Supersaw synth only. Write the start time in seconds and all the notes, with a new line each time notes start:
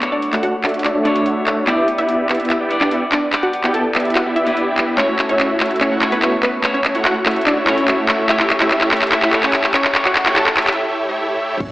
0.33 A3 D4 F#4 C#5 F#5
0.64 A3 D4 F#4 C#5 E5
0.95 A3 D4 F#4 C#5 E5
1.47 A3 D4 F#4 C#5 E5
1.67 B3 E4 G4 D5 E5
1.98 B3 E4 G4 D5 E5
2.29 B3 E4 G4 D5 E5
2.61 B3 E4 G4 D5 G5
2.92 B3 E4 G4 D5 E5
3.64 B3 E4 G4 D5 G5
3.95 B3 E4 G4 D5 E5
4.26 B3 E4 G4 D5 E5
4.47 B3 E4 G4 D5 E5
4.98 A3 E4 F#4 C#5 E5
5.29 A3 E4 F#4 C#5 E5
5.60 A3 E4 F#4 C#5 E5
5.91 A3 E4 F#4 C#5 F#5
6.22 A3 E4 F#4 C#5 E5
6.95 A3 E4 F#4 C#5 F#5
7.26 A3 E4 F#4 C#5 E5
7.57 A3 E4 F#4 C#5 E5
8.09 A3 E4 F#4 C#5 E5
8.29 A3 E4 G4 C#5 E5
8.61 A3 E4 G4 C#5 E5
8.91 A3 E4 G4 C#5 E5
9.23 A3 E4 G4 C#5 F#5
9.54 A3 E4 G4 C#5 E5
10.26 A3 E4 G4 C#5 F#5
10.57 A3 E4 G4 C#5 E5
10.88 A3 E4 G4 C#5 E5
11.09 A3 E4 G4 C#5 E5
11.60 A3